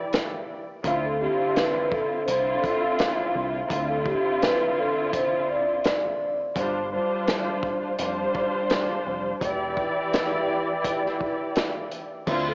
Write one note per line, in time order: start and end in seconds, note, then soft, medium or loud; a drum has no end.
0.00 0.63 E3 loud
0.00 0.63 E4 medium
0.00 0.63 G4 medium
0.00 0.63 D5 loud
0.13 snare loud
0.13 closed hi-hat medium
0.84 1.27 D2 loud
0.84 1.18 D3 medium
0.84 1.18 C4 medium
0.84 1.18 E4 medium
0.84 1.18 F4 loud
0.84 kick loud
0.84 closed hi-hat medium
1.05 1.19 A4 medium
1.20 2.20 D3 loud
1.20 2.20 C4 medium
1.20 2.20 E4 medium
1.20 2.20 F4 loud
1.20 1.53 G4 medium
1.56 1.89 B4 medium
1.56 snare loud
1.56 snare medium
1.56 closed hi-hat medium
1.91 2.23 A4 medium
1.91 kick loud
2.25 2.55 C2 loud
2.25 3.60 D3 loud
2.25 3.61 C4 medium
2.25 3.61 E4 medium
2.25 3.61 F4 loud
2.25 2.58 C5 medium
2.25 closed hi-hat loud
2.61 2.94 A4 medium
2.61 kick medium
2.61 closed hi-hat medium
2.99 snare loud
2.99 closed hi-hat medium
3.35 3.62 C2 medium
3.69 4.13 D2 loud
3.69 6.34 D3 loud
3.69 6.34 C4 medium
3.69 6.35 E4 loud
3.69 6.35 F4 loud
3.69 kick loud
3.69 closed hi-hat medium
3.90 4.04 A4 medium
4.06 4.38 G4 medium
4.06 kick medium
4.41 4.73 B4 medium
4.41 snare loud
4.41 snare medium
4.41 closed hi-hat medium
4.78 5.10 A4 medium
5.12 5.45 C5 medium
5.12 kick medium
5.12 closed hi-hat loud
5.49 6.52 D5 medium
5.84 snare loud
5.84 closed hi-hat medium
6.56 6.98 G1 loud
6.56 6.89 G3 medium
6.56 6.89 D4 medium
6.56 6.89 F4 medium
6.56 6.90 C5 loud
6.56 kick loud
6.56 closed hi-hat medium
6.91 7.91 G3 medium
6.91 7.91 D4 medium
6.91 7.92 F4 medium
6.91 7.92 C5 loud
7.28 snare loud
7.28 closed hi-hat medium
7.63 kick loud
7.99 8.26 F1 medium
7.99 9.32 G3 loud
7.99 9.32 D4 medium
7.99 9.32 F4 medium
7.99 9.32 C5 loud
7.99 closed hi-hat loud
8.35 kick medium
8.70 snare loud
8.70 closed hi-hat medium
9.06 9.33 F1 medium
9.41 9.84 E1 loud
9.41 12.06 E3 loud
9.41 12.06 E4 loud
9.41 12.07 G4 medium
9.41 12.07 D5 loud
9.41 kick loud
9.41 closed hi-hat medium
9.77 kick medium
10.13 snare loud
10.13 closed hi-hat medium
10.84 kick medium
10.84 closed hi-hat loud
11.06 snare soft
11.21 kick medium
11.55 snare loud
11.55 closed hi-hat medium
11.91 closed hi-hat medium
12.27 12.54 D2 loud
12.27 12.54 D3 medium
12.27 12.54 C4 medium
12.27 12.54 E4 medium
12.27 12.54 F4 loud
12.27 kick loud
12.27 crash loud
12.27 shaker medium
12.48 12.54 A4 medium